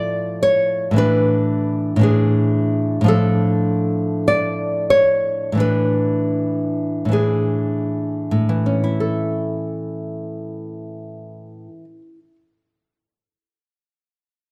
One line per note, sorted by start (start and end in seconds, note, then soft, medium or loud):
0.00 0.90 A2 soft
0.00 0.91 F3 soft
0.00 0.93 D4 soft
0.00 0.41 D5 medium
0.43 0.95 C#5 medium
0.91 1.95 A2 soft
0.91 1.96 E3 soft
0.96 1.98 D4 soft
0.96 1.98 B4 medium
1.96 3.00 A2 soft
1.96 3.04 E3 soft
2.01 3.05 D4 soft
2.01 3.06 G#4 medium
3.01 5.51 A2 soft
3.01 5.52 F3 soft
3.06 5.53 D4 soft
3.06 4.23 A4 medium
4.28 4.89 D5 medium
4.90 5.55 C#5 medium
5.52 7.04 A2 soft
5.52 7.06 E3 soft
5.57 7.07 D4 soft
5.57 7.09 B4 medium
7.05 8.30 A2 soft
7.05 8.48 E3 soft
7.12 8.96 D4 soft
7.12 8.97 G#4 soft
8.31 11.66 A2 soft
8.49 11.84 E3 soft
8.66 12.01 C#4 soft
8.84 12.19 E4 soft
9.00 12.35 A4 soft